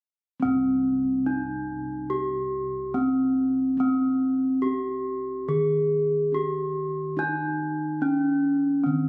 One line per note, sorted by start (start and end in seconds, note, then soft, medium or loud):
0.40 2.90 C4 medium
0.40 1.26 C4 medium
0.45 5.46 C2 medium
1.25 1.33 C#4 soft
1.25 2.11 D#4 medium
2.10 2.95 G4 medium
2.94 3.79 C4 medium
2.94 3.02 C#4 soft
3.77 6.28 C4 medium
3.77 4.64 C4 medium
4.62 4.71 C#4 soft
4.62 5.47 G4 medium
5.48 7.98 D#3 medium
5.48 6.33 G#4 medium
6.32 6.40 C#4 soft
6.32 7.18 G4 medium
7.17 9.09 D#4 medium
7.17 8.03 D#4 medium
8.01 8.09 C#4 soft
8.01 8.86 C#4 medium
8.84 9.09 D#3 medium
8.84 9.09 C4 medium